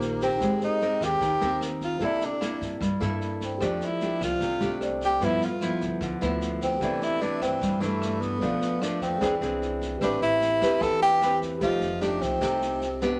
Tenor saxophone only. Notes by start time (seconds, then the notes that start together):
Already playing: A#3
0.23 C4
0.64 D#4
1.04 G4
1.84 F4
2.05 E4
2.24 D4
3.44 C4
3.84 E4
4.25 F4
5.05 G4
5.24 E4
5.44 F4
6.63 C4
7.03 E4
7.22 D4
7.42 C4
7.81 A3
8.21 B3
8.82 D4
9.02 C4
10.03 D4
10.22 E4
10.82 A4
11.03 G4
11.63 F4
12.02 D4
12.22 C4